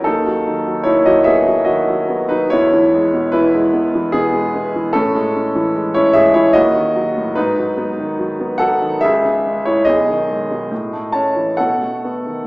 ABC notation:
X:1
M:3/4
L:1/16
Q:1/4=73
K:E
V:1 name="Grand piano"
[DA]4 [Ec] [Fd] [Ge]2 [Fd]3 [DB] | [Ec]4 [EB]4 [B,G]4 | [CA]4- [CA] [Ec] [Ge] [Ec] [Fd]4 | [DB]6 [Af]2 [Ge]3 [Ec] |
[Gd]6 [ca]2 [Af]4 |]
V:2 name="Grand piano" clef=bass
D,, F, D, F, D, F, B, F, D, F, B, F, | E,, E, G, B,, E, G, B, E, B,, G, B, E, | A,, G, C E, G, C G, E, D,, D, F, A,, | G,, F, B, D, F, B, F, D, C,, C, G, G,, |
B,,, D, G, B,, A,, A, C E, B,, A, B, D, |]